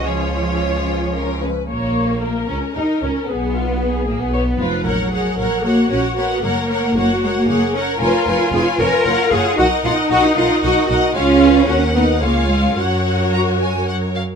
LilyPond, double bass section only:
\new Staff \with { instrumentName = "Double bass section" } { \clef bass \time 3/4 \key fis \major \tempo 4 = 114 cis,2~ cis,8 r8 | ais,,4. cis,8 dis,8 cis,8 | ces,4. ais,,16 ces,8. f,,8 | ais,,4 ais,,4 ais,,4 |
fis,,4 fis,,4 fis,,4 | eis,,8 eis,,8 eis,,8 eis,,8 fis,,8 fis,,8 | b,,8 b,,8 b,,8 b,,8 b,,8 b,,8 | cis,4 dis,4 cis,4 |
fis,2~ fis,8 r8 | }